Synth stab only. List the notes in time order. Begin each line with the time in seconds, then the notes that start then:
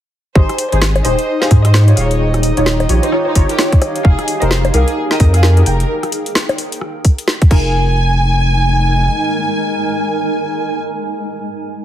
0.36 D#4 G4 G#4 C5
0.72 D#4 G4 G#4 C5
1.05 D#4 G4 G#4 C5
1.42 D#4 G4 G#4 C5
1.51 D#4 G4 G#4 C5
1.74 D#4 G4 G#4 C5
1.88 D#4 F4 G4 C#5
2.57 D#4 F4 G4 C#5
2.89 D#4 F4 G4 C#5
3.12 D#4 F4 G4 C#5
3.35 D#4 F4 G4 C#5
3.59 D#4 F4 G4 C#5
4.42 D#4 G4 G#4 A#4
4.74 D#4 G4 G#4 A#4
5.11 D#4 G4 G#4 A#4
5.20 D#4 G4 G#4
5.43 D#4 G4 G#4 A#4
5.57 D#4 G4 G#4 A#4
7.51 D#4 F4 G#4 A#4